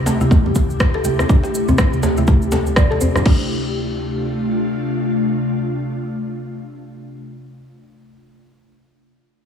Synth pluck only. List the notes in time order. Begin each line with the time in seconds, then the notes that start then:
0.07 A3
0.21 E4
0.31 A3
0.95 A4
1.05 G4
1.19 E4
1.29 D4
1.44 G4
1.68 C4
1.79 E4
2.03 A3
2.18 E4
2.28 A3
2.52 A4
2.76 D5
2.91 A4
3.01 C5
3.15 D4
3.26 D4